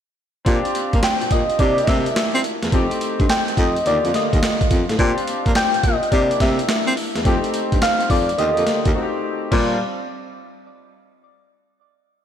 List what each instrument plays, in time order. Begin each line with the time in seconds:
0.45 baritone saxophone A#2, grand piano C4 D4 F4 G4, kick, closed hi-hat
0.65 closed hi-hat
0.75 baritone saxophone A#3, closed hi-hat
0.93 baritone saxophone A#3, kick, closed hi-hat
1.03 soft synth lead G5, snare, clap, closed hi-hat
1.21 baritone saxophone A#2, closed hi-hat
1.31 baritone saxophone A#2, soft synth lead D#5, kick, closed hi-hat
1.50 closed hi-hat
1.59 baritone saxophone C3, grand piano A#3 D4 E4 G4, soft synth lead D5, kick, closed hi-hat
1.78 closed hi-hat
1.84 baritone saxophone C3, soft synth lead D#5, kick, snare, closed hi-hat
1.89 soft synth lead E5
2.06 closed hi-hat
2.16 snare, clap, closed hi-hat
2.35 baritone saxophone C4, closed hi-hat
2.44 closed hi-hat
2.63 baritone saxophone E2, snare, closed hi-hat
2.71 baritone saxophone F2, grand piano A3 C4 D#4 G4, kick, closed hi-hat
2.91 closed hi-hat
3.01 closed hi-hat
3.20 baritone saxophone G2, kick, closed hi-hat
3.29 soft synth lead G5, snare, clap, closed hi-hat
3.48 closed hi-hat
3.57 baritone saxophone F2, soft synth lead D#5, kick, closed hi-hat
3.76 closed hi-hat
3.85 baritone saxophone D#2, grand piano D3 A#3 F4 G4, soft synth lead D5, closed hi-hat
4.05 baritone saxophone F2, closed hi-hat
4.14 soft synth lead D#5, snare, closed hi-hat
4.33 baritone saxophone D#2, kick, closed hi-hat
4.43 snare, clap, closed hi-hat
4.61 kick, closed hi-hat
4.71 baritone saxophone F2, kick, closed hi-hat
4.89 baritone saxophone A2, snare, closed hi-hat
4.98 baritone saxophone A#2, grand piano C4 D4 F4 G4, kick, closed hi-hat
5.18 closed hi-hat
5.27 baritone saxophone A#3, closed hi-hat
5.46 baritone saxophone A#3, kick, closed hi-hat
5.55 soft synth lead G5, snare, clap, closed hi-hat
5.74 baritone saxophone A#2, closed hi-hat
5.83 baritone saxophone A#2, soft synth lead D#5, kick, closed hi-hat
6.03 closed hi-hat
6.11 baritone saxophone C3, grand piano A#3 D4 E4 G4, soft synth lead D5, kick, closed hi-hat
6.31 closed hi-hat
6.40 baritone saxophone C3, soft synth lead E5, kick, snare, closed hi-hat
6.59 closed hi-hat
6.69 snare, clap, closed hi-hat
6.87 baritone saxophone C4, closed hi-hat
6.97 open hi-hat
7.16 baritone saxophone E2, snare, closed hi-hat
7.24 baritone saxophone F2, grand piano A3 C4 D#4 G4, kick, closed hi-hat
7.44 closed hi-hat
7.54 closed hi-hat
7.72 baritone saxophone G2, kick, closed hi-hat
7.82 soft synth lead F5, snare, clap, closed hi-hat
8.01 closed hi-hat
8.10 baritone saxophone F2, soft synth lead D5, kick, open hi-hat
8.29 closed hi-hat
8.38 baritone saxophone D#2, grand piano D3 A#3 F4 G4, soft synth lead D#5, closed hi-hat
8.57 baritone saxophone F2, closed hi-hat
8.67 snare, closed hi-hat
8.85 baritone saxophone D#2, kick, closed hi-hat
8.94 grand piano A3 C4 D#4 F#4
9.02 grand piano G4
9.51 baritone saxophone A#2, grand piano G3 C4 D4 F4, soft synth lead D5, kick, crash